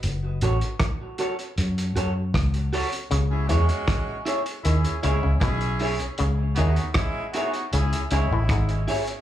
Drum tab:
HH |x-xxx-xxxxx-xxox|x-xxx-xxxxx-xxox|x-xxx-xxxxx-xxox|
SD |----r-------r---|----r-------r---|----r-------r---|
BD |----o-------o---|----o-------o---|----o-------o---|